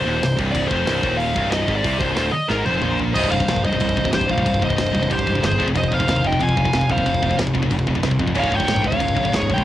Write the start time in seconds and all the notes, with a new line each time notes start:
Already playing: C5
0.05 D#1 D#2
0.22 C1 C2, snare, open hi-hat
0.39 C1 C2, kick
0.52 C1 C2 D5, kick, crash
0.68 F1 F2 C5, kick
0.87 C1 C2, snare, open hi-hat
1.03 D#1 D#2, kick
1.17 F5, open hi-hat
1.36 C1 C2, kick
1.50 D#5, snare, open hi-hat
1.68 G#1 G#2, kick
1.75 D5
1.83 C2 C3, kick, open hi-hat
1.99 C1 C2 C5, kick
2.16 D1 D2 C5, snare, open hi-hat
2.31 D#5, muted distorted electric guitar stroke, muted picked electric bass stroke
2.48 G#1 G#2 A#4, snare
2.65 F1 F2 C5, high tom
2.82 A#1 A#2, mid tom
2.99 floor tom
3.14 C1 C2 G2 C3 C5 D#5, kick, crash
3.24 kick
3.31 C1 C2 G2 C5 F5, kick
3.40 C2 G2, kick
3.48 A#1 C2 G2, kick, snare, crash
3.56 kick
3.64 C1 C2 G2 C5 D#5, kick
3.73 C2 G2, kick
3.80 C2 G2, kick, crash
3.89 kick
3.96 C1 C2 G2, kick
4.04 C2 G2, kick
4.12 C1 C2 G2 G4 C5, kick, snare, crash
4.21 kick
4.27 A#1 C2 G2 C5, kick
4.31 F5
4.38 C2 G2, kick
4.45 C1 C2 G2, kick, crash
4.54 kick
4.60 C1 C2 G2 C5, kick
4.65 D#5
4.69 C2 G2, kick
4.76 C1 C2 G2, kick, snare, crash
4.87 kick
4.92 C1 C2 G2, kick
5.00 C2 G2, kick
5.10 C1 C2 G2 G4 C5, kick, crash
5.19 kick
5.26 C1 C2 G2, kick
5.35 C2 G2, kick
5.43 G1 C2 G2 G#4 C5, kick, snare, crash
5.52 kick
5.59 F1 F2 C3 F3, kick
5.67 F2 C3, kick
5.75 F1 F2 C3 C5 D#5, kick, crash
5.84 kick
5.92 F1 F2 C3 C5 F5, kick
6.00 F2 C3, kick
6.07 D#2 F2 C3, kick, snare, crash
6.16 kick
6.24 F1 F2 C3 D#5 G5, kick
6.32 F2 C3, kick
6.40 F2 C3 F5 G#5, kick, crash
6.49 kick
6.57 F1 F2 C3, kick
6.65 F2 C3, kick
6.73 F1 F2 C3, kick, snare, crash
6.81 kick
6.89 D#1 F2 C3 C5 F5, kick
6.98 F2 C3, kick
7.06 F1 F2 C3, kick, crash
7.14 kick
7.22 F1 F2 C3, kick
7.29 F2 C3, kick
7.39 F1 F2 C3, kick, snare, crash
7.47 kick
7.54 F1 F2 C3, kick
7.62 F2 C3, kick
7.71 F1 F2 C3, kick, crash
7.79 kick
7.87 F1 F2 C3, kick
7.95 F2 C3, kick
8.03 C2 F2 C3, kick, snare, crash
8.11 kick
8.19 F2 C3, kick
8.27 F2 C3, kick
8.35 C#1 C#2 G#2 C#3 C#5, kick, crash
8.40 F5
8.44 kick
8.50 C#1 C#2 G#2 C#5, kick
8.55 C#2 G#2 G5
8.60 kick
8.67 A#1 C#2 G#2, kick, snare, crash
8.76 kick
8.82 C#1 C#2 G#2, kick
8.86 C#5 F5
8.91 C#2 G#2, kick
8.99 C#2 G#2, kick, crash
9.08 kick
9.15 C#1 C#2 G#2, kick
9.23 C#2 G#2, kick
9.32 C#1 C#2 G#2 G#4 C#5, kick, snare, crash
9.42 kick
9.50 A#1 C#2 G#2 C#5, kick
9.54 C#2 G#2 G5
9.58 kick